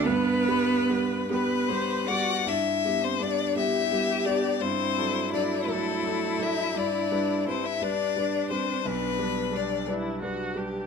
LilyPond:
<<
  \new Staff \with { instrumentName = "Violin" } { \time 6/8 \key g \major \tempo 4. = 56 b'4. b'4 fis''8 | e''8. c''16 d''8 e''4 d''8 | c''4 d''8 a'4 e''8 | d''4 c''16 e''16 d''4 c''8 |
b'4 d''8 r4. | }
  \new Staff \with { instrumentName = "Viola" } { \time 6/8 \key g \major b'4. b'8 c''8 d''8 | r4. g'4. | e'2.~ | e'4. d'4.~ |
d'4. e'8 fis'8 g'8 | }
  \new Staff \with { instrumentName = "Cello" } { \time 6/8 \key g \major b4. b4 fis'8 | e'8. c'16 d'8 e'4 d'8 | c'4 d'8 a4 e'8 | d'4 c'16 e'16 d'4 c'8 |
b4 d'8 r4. | }
  \new Staff \with { instrumentName = "Grand piano" } { \time 6/8 \key g \major g,8 <g b g'>8 <g b g'>8 <g b g'>8 <g b g'>8 <g b g'>8 | g,8 <g b g'>8 <g b g'>8 <g b g'>8 <g b g'>8 <g b g'>8 | g,8 <fis d' a'>8 <fis d' a'>8 <fis d' a'>8 <fis d' a'>8 <fis d' a'>8 | g,8 <g d' b'>8 <g d' b'>8 <g d' b'>8 <g d' b'>8 <g d' b'>8 |
b,,8 <g d' b'>8 <g d' b'>8 <g d' b'>8 <g d' b'>8 <g d' b'>8 | }
>>